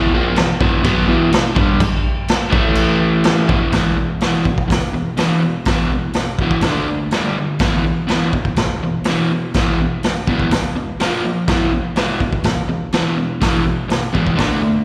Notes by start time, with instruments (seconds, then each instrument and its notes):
Already playing: overdriven electric guitar E2 B2 E3
0.14 overdriven electric guitar A#2 F3 A#3
0.36 overdriven electric guitar E2 B2, snare, crash
0.60 overdriven electric guitar E2 B2 E3, kick
0.83 overdriven electric guitar B2 F#3 B3, kick, crash
1.07 overdriven electric guitar E2 B2 E3
1.31 overdriven electric guitar E2 B2, snare, crash
1.55 overdriven electric guitar G2 D3 G3, kick
1.80 kick, crash
2.28 snare, crash
2.50 overdriven electric guitar A2 E3 A3, kick
2.75 crash
3.24 snare, crash
3.48 overdriven electric guitar E2 B2 E3, kick
3.72 overdriven electric guitar E2 B2 E3, kick, snare, open hi-hat
3.96 overdriven electric guitar E2 B2
4.20 overdriven electric guitar E2 B2 E3, snare, open hi-hat
4.45 overdriven electric guitar E2 B2, kick
4.58 kick
4.68 overdriven electric guitar E2 B2, kick, snare, open hi-hat
4.93 overdriven electric guitar E2 B2
5.17 overdriven electric guitar E2 B2 E3, snare, open hi-hat
5.42 overdriven electric guitar E2 B2
5.65 overdriven electric guitar E2 B2 E3, kick, snare, open hi-hat
5.92 overdriven electric guitar E2 B2
6.13 overdriven electric guitar E2 B2, snare, open hi-hat
6.39 overdriven electric guitar E2 B2 E3, kick
6.51 kick
6.61 kick, snare, open hi-hat
6.65 overdriven electric guitar D3 A3 D4
6.89 overdriven electric guitar D3 A3
7.11 overdriven electric guitar G2 D3 G3, snare, open hi-hat
7.38 overdriven electric guitar G2 D3
7.59 overdriven electric guitar E2 B2 E3, kick, snare, open hi-hat
7.84 overdriven electric guitar E2 B2
8.08 overdriven electric guitar E2 B2 E3, snare, open hi-hat
8.33 overdriven electric guitar E2 B2, kick
8.45 kick
8.56 overdriven electric guitar E2 B2, kick, snare, open hi-hat
8.83 overdriven electric guitar E2 B2
9.04 overdriven electric guitar E2, snare, open hi-hat
9.08 overdriven electric guitar B2 E3
9.31 overdriven electric guitar E2 B2
9.54 overdriven electric guitar E2 B2 E3, kick, snare, open hi-hat
9.81 overdriven electric guitar E2 B2
10.03 overdriven electric guitar E2 B2, snare, open hi-hat
10.27 overdriven electric guitar E2 B2 E3, kick
10.40 kick
10.51 overdriven electric guitar E2 B2, kick, snare, open hi-hat
10.75 overdriven electric guitar E2 B2
11.00 overdriven electric guitar A#2 F3 A#3, snare, open hi-hat
11.25 overdriven electric guitar A#2 F3
11.48 overdriven electric guitar E2 B2 E3, kick, snare, open hi-hat
11.73 overdriven electric guitar E2 B2
11.96 overdriven electric guitar E2 B2 E3, snare, open hi-hat
12.20 overdriven electric guitar E2 B2, kick
12.33 kick
12.44 overdriven electric guitar E2 B2, kick, snare, open hi-hat
12.69 overdriven electric guitar E2 B2
12.92 overdriven electric guitar E2 B2 E3, snare, open hi-hat
13.17 overdriven electric guitar E2 B2
13.41 overdriven electric guitar E2 B2 E3, kick, snare, open hi-hat
13.65 overdriven electric guitar E2 B2
13.89 overdriven electric guitar E2 B2, snare, open hi-hat
14.13 overdriven electric guitar E2 B2 E3, kick
14.27 kick
14.36 overdriven electric guitar D3 A3 D4, kick, snare, open hi-hat
14.62 overdriven electric guitar D3 A3